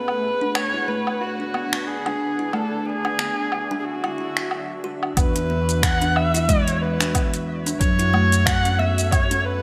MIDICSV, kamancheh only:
0, 0, Header, 1, 2, 480
1, 0, Start_track
1, 0, Tempo, 659341
1, 1843, Time_signature, 4, 2, 24, 8
1, 7005, End_track
2, 0, Start_track
2, 0, Title_t, "Kamancheh"
2, 0, Program_c, 0, 110
2, 0, Note_on_c, 0, 71, 102
2, 401, Note_on_c, 0, 73, 100
2, 412, Note_off_c, 0, 71, 0
2, 639, Note_on_c, 0, 71, 93
2, 650, Note_off_c, 0, 73, 0
2, 880, Note_on_c, 0, 66, 86
2, 891, Note_off_c, 0, 71, 0
2, 1359, Note_on_c, 0, 68, 88
2, 1370, Note_off_c, 0, 66, 0
2, 1839, Note_on_c, 0, 69, 91
2, 1849, Note_off_c, 0, 68, 0
2, 2081, Note_on_c, 0, 68, 99
2, 2092, Note_off_c, 0, 69, 0
2, 2758, Note_off_c, 0, 68, 0
2, 2762, Note_on_c, 0, 68, 54
2, 2802, Note_on_c, 0, 66, 77
2, 2813, Note_off_c, 0, 68, 0
2, 3522, Note_off_c, 0, 66, 0
2, 3772, Note_on_c, 0, 71, 98
2, 4247, Note_on_c, 0, 78, 111
2, 4258, Note_off_c, 0, 71, 0
2, 4485, Note_on_c, 0, 76, 108
2, 4496, Note_off_c, 0, 78, 0
2, 4724, Note_on_c, 0, 73, 98
2, 4735, Note_off_c, 0, 76, 0
2, 4960, Note_on_c, 0, 71, 93
2, 4971, Note_off_c, 0, 73, 0
2, 5442, Note_off_c, 0, 71, 0
2, 5679, Note_on_c, 0, 73, 107
2, 6157, Note_on_c, 0, 78, 120
2, 6168, Note_off_c, 0, 73, 0
2, 6398, Note_on_c, 0, 76, 105
2, 6409, Note_off_c, 0, 78, 0
2, 6637, Note_on_c, 0, 73, 94
2, 6648, Note_off_c, 0, 76, 0
2, 6880, Note_on_c, 0, 71, 97
2, 6890, Note_off_c, 0, 73, 0
2, 7005, Note_off_c, 0, 71, 0
2, 7005, End_track
0, 0, End_of_file